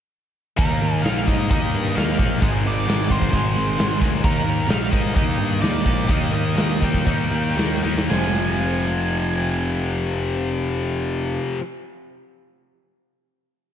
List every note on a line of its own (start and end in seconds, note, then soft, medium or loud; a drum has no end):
0.58 0.81 D#2 medium
0.58 1.04 D#3 medium
0.58 1.03 G3 medium
0.58 0.84 A#3 medium
0.58 0.83 D#4 medium
0.58 0.80 G4 loud
0.58 1.01 A#4 medium
0.58 kick loud
0.58 open hi-hat medium
0.82 1.03 D#2 medium
0.82 1.04 A#3 soft
0.82 1.06 D#4 medium
0.82 1.07 G4 medium
0.82 open hi-hat soft
1.02 1.26 A#1 medium
1.02 1.26 D#3 medium
1.02 1.50 G3 medium
1.02 1.51 A#3 medium
1.02 1.26 F5 loud
1.02 snare loud
1.02 open hi-hat medium
1.07 1.52 D#4 medium
1.07 1.53 G4 medium
1.27 1.49 G#2 medium
1.27 1.49 D#3 medium
1.27 1.48 A#3 medium
1.27 1.50 D#4 medium
1.27 1.50 D#5 medium
1.27 kick medium
1.27 open hi-hat soft
1.50 1.73 D#2 medium
1.50 1.96 D#3 medium
1.50 1.94 G3 medium
1.50 1.75 A#3 medium
1.50 1.74 D#4 medium
1.50 1.71 G4 medium
1.50 1.93 D#5 medium
1.50 kick loud
1.50 open hi-hat medium
1.73 1.96 G2 medium
1.73 1.96 A#3 medium
1.73 1.97 D#4 medium
1.73 1.98 G4 medium
1.73 open hi-hat medium
1.95 2.19 D#2 medium
1.95 2.17 D#3 medium
1.95 2.40 G3 medium
1.95 2.21 A#3 medium
1.95 2.20 D#4 medium
1.95 2.43 F5 medium
1.95 snare medium
1.95 open hi-hat medium
1.99 2.17 G4 medium
2.18 2.41 A#1 medium
2.18 2.40 D#3 medium
2.18 2.43 D#4 medium
2.18 2.40 G4 medium
2.18 kick medium
2.18 open hi-hat soft
2.22 2.42 A#3 medium
2.40 2.64 G#1 medium
2.40 2.87 G#2 medium
2.40 2.87 D#3 medium
2.40 2.66 G#3 medium
2.40 2.65 C4 medium
2.40 2.65 D#4 medium
2.40 2.62 G#4 medium
2.40 2.49 D#5 loud
2.40 kick loud
2.40 open hi-hat medium
2.64 2.87 G#1 medium
2.64 2.85 G#3 medium
2.64 2.87 C4 medium
2.64 2.88 D#4 medium
2.64 2.89 G#4 medium
2.64 3.13 D5 medium
2.64 open hi-hat medium
2.86 3.32 G#1 medium
2.86 3.08 G#2 medium
2.86 3.09 D#3 medium
2.86 3.33 G#3 medium
2.86 3.33 C4 medium
2.86 3.35 D#4 medium
2.86 3.34 G#4 medium
2.86 snare loud
2.86 open hi-hat medium
3.09 3.30 G#2 medium
3.09 3.30 D#3 medium
3.09 3.31 G#3 medium
3.09 3.98 C5 medium
3.09 kick medium
3.09 open hi-hat soft
3.22 kick medium
3.32 3.55 G#1 medium
3.32 3.78 G#2 medium
3.32 3.78 D#3 medium
3.32 3.58 G#3 medium
3.32 3.57 C4 medium
3.32 3.57 D#4 medium
3.32 3.54 G#4 medium
3.32 kick medium
3.32 open hi-hat medium
3.55 3.79 G#1 medium
3.55 3.78 G#3 soft
3.55 3.79 C4 medium
3.55 3.80 D#4 medium
3.55 3.81 G#4 medium
3.55 open hi-hat soft
3.78 4.01 G#1 medium
3.78 3.98 G#2 medium
3.78 3.98 D#3 medium
3.78 4.03 G#3 medium
3.78 4.02 C4 medium
3.78 4.02 D#4 medium
3.78 snare loud
3.78 open hi-hat medium
3.82 4.00 G#4 medium
3.99 4.23 D2 medium
3.99 4.22 G#2 medium
3.99 4.22 D#3 medium
3.99 4.22 G#3 medium
3.99 4.25 D#4 medium
3.99 4.23 G#4 medium
3.99 kick medium
3.99 open hi-hat soft
4.03 4.24 G#3 medium
4.03 4.24 C4 medium
4.23 4.44 D#2 medium
4.23 5.14 D#3 medium
4.23 4.69 G3 medium
4.23 4.49 A#3 medium
4.23 4.48 D#4 medium
4.23 4.46 G4 medium
4.23 4.71 A#4 medium
4.23 kick loud
4.23 open hi-hat medium
4.45 4.67 D#2 medium
4.45 4.71 D#4 medium
4.45 4.72 G4 medium
4.45 open hi-hat soft
4.50 4.70 A#3 medium
4.67 4.91 A#1 medium
4.67 4.91 D#3 medium
4.67 5.15 G3 medium
4.67 5.15 A#3 medium
4.67 4.91 F5 medium
4.67 snare medium
4.67 open hi-hat medium
4.72 5.16 D#4 medium
4.72 5.17 G4 medium
4.91 5.15 G#2 medium
4.91 5.14 D#3 medium
4.91 5.15 A#3 medium
4.91 5.14 D#4 medium
4.91 5.13 D#5 medium
4.91 kick medium
4.91 open hi-hat soft
5.06 snare soft
5.14 5.37 D#2 medium
5.14 5.62 D#3 medium
5.14 5.61 G3 medium
5.14 5.40 A#3 medium
5.14 5.38 D#4 loud
5.14 5.37 G4 medium
5.14 5.61 D#5 medium
5.14 kick loud
5.14 open hi-hat medium
5.37 5.61 G2 medium
5.37 5.62 D#4 medium
5.37 5.64 G4 medium
5.37 open hi-hat soft
5.42 5.61 A#3 medium
5.61 5.85 D#2 medium
5.61 5.83 D#3 medium
5.61 6.08 G3 medium
5.61 5.88 A#3 medium
5.61 5.87 D#4 medium
5.61 5.85 G4 medium
5.61 6.11 D5 medium
5.61 snare loud
5.61 open hi-hat medium
5.85 6.09 A#1 medium
5.85 6.06 D#3 medium
5.85 6.07 A#3 medium
5.85 6.09 D#4 medium
5.85 6.10 G4 medium
5.85 kick medium
5.85 open hi-hat medium
5.89 6.08 A#3 medium
6.07 6.32 D#2 medium
6.07 6.57 D#3 medium
6.07 6.54 G3 medium
6.07 6.35 A#3 medium
6.07 6.33 D#4 medium
6.07 6.31 G4 medium
6.07 kick loud
6.07 open hi-hat medium
6.11 6.33 D#5 loud
6.32 6.56 D#2 medium
6.32 6.56 A#3 medium
6.32 6.57 D#4 medium
6.32 6.58 G4 medium
6.32 6.84 D#5 medium
6.32 open hi-hat medium
6.55 7.05 D#2 medium
6.55 6.80 D#3 medium
6.55 7.05 G3 medium
6.55 7.06 A#3 medium
6.55 7.07 D#4 medium
6.55 7.08 G4 medium
6.55 snare loud
6.55 open hi-hat medium
6.81 7.05 D#3 medium
6.81 7.05 A#3 medium
6.81 7.05 D#4 medium
6.81 7.81 G5 loud
6.81 kick medium
6.81 open hi-hat soft
6.94 kick medium
7.05 7.31 D#2 medium
7.05 7.57 D#3 medium
7.05 7.55 G3 medium
7.05 7.34 A#3 loud
7.05 7.32 D#4 medium
7.05 7.30 G4 medium
7.05 kick medium
7.05 open hi-hat medium
7.31 7.57 D#2 medium
7.31 7.56 A#3 medium
7.31 7.57 D#4 medium
7.31 7.59 G4 medium
7.31 open hi-hat soft
7.56 7.83 D#2 medium
7.56 7.82 D#3 medium
7.56 8.08 G3 medium
7.56 7.86 A#3 medium
7.56 7.84 D#4 medium
7.56 7.82 G4 medium
7.56 snare loud
7.56 open hi-hat medium
7.83 8.09 D#2 medium
7.83 8.08 D#3 medium
7.83 8.10 A#3 medium
7.83 8.09 D#4 medium
7.83 8.08 G4 medium
7.83 snare medium
7.98 snare medium
8.09 11.37 F1 medium
8.09 11.59 F2 medium
8.09 11.60 C3 medium
8.09 11.60 F3 medium
8.09 11.61 G#3 medium
8.09 11.62 C4 medium
8.09 11.38 G#5 medium
8.09 snare loud
8.09 splash medium